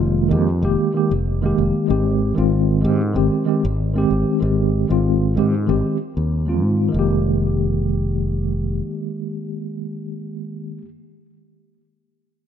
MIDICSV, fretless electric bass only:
0, 0, Header, 1, 2, 480
1, 0, Start_track
1, 0, Key_signature, -4, "minor"
1, 0, Tempo, 631579
1, 1436, Time_signature, 4, 2, 24, 8
1, 9478, End_track
2, 0, Start_track
2, 0, Title_t, "Fretless electric bass"
2, 0, Program_c, 0, 35
2, 0, Note_on_c, 0, 29, 94
2, 236, Note_on_c, 0, 41, 96
2, 248, Note_off_c, 0, 29, 0
2, 475, Note_on_c, 0, 29, 87
2, 487, Note_off_c, 0, 41, 0
2, 573, Note_off_c, 0, 29, 0
2, 846, Note_on_c, 0, 29, 88
2, 1157, Note_off_c, 0, 29, 0
2, 1201, Note_on_c, 0, 29, 70
2, 1296, Note_off_c, 0, 29, 0
2, 1445, Note_on_c, 0, 32, 83
2, 1761, Note_off_c, 0, 32, 0
2, 1807, Note_on_c, 0, 32, 87
2, 2162, Note_on_c, 0, 44, 94
2, 2174, Note_off_c, 0, 32, 0
2, 2399, Note_on_c, 0, 32, 84
2, 2410, Note_off_c, 0, 44, 0
2, 2495, Note_off_c, 0, 32, 0
2, 2771, Note_on_c, 0, 32, 94
2, 3079, Note_off_c, 0, 32, 0
2, 3119, Note_on_c, 0, 32, 67
2, 3215, Note_off_c, 0, 32, 0
2, 3361, Note_on_c, 0, 32, 78
2, 3679, Note_off_c, 0, 32, 0
2, 3727, Note_on_c, 0, 32, 87
2, 4082, Note_on_c, 0, 44, 88
2, 4094, Note_off_c, 0, 32, 0
2, 4323, Note_on_c, 0, 32, 88
2, 4335, Note_off_c, 0, 44, 0
2, 4417, Note_off_c, 0, 32, 0
2, 4688, Note_on_c, 0, 39, 73
2, 5038, Note_off_c, 0, 39, 0
2, 5038, Note_on_c, 0, 44, 71
2, 5225, Note_off_c, 0, 44, 0
2, 5276, Note_on_c, 0, 29, 75
2, 6686, Note_off_c, 0, 29, 0
2, 9478, End_track
0, 0, End_of_file